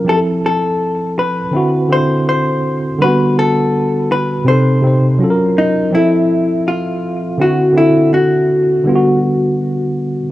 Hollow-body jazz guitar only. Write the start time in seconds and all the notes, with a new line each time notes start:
0.09 A4
0.46 A4
1.19 B4
1.93 C5
2.29 C5
3.02 B4
3.39 A4
4.12 B4
4.48 C5
5.58 D#4
5.95 E4
6.68 F4
7.41 F#4
7.78 E4
8.14 F#4